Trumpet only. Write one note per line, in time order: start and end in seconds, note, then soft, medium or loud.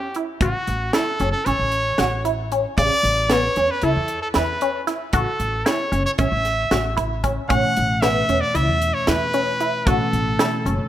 0.00 0.16 G4 medium
0.43 0.95 F#4 medium
0.93 1.31 A4 medium
1.32 1.47 A4 medium
1.46 2.25 C#5 medium
2.78 3.33 D5 medium
3.31 3.72 C#5 medium
3.71 3.85 B4 medium
3.84 4.21 A4 medium
4.22 4.28 A4 medium
4.36 4.85 B4 medium
5.13 5.67 A4 medium
5.66 6.05 C#5 medium
6.06 6.12 C#5 medium
6.19 6.94 E5 medium
7.49 8.03 F#5 medium
8.01 8.42 E5 medium
8.41 8.57 D5 medium
8.56 8.95 E5 medium
8.94 9.08 C#5 medium
9.09 9.88 B4 medium
9.86 10.88 A4 medium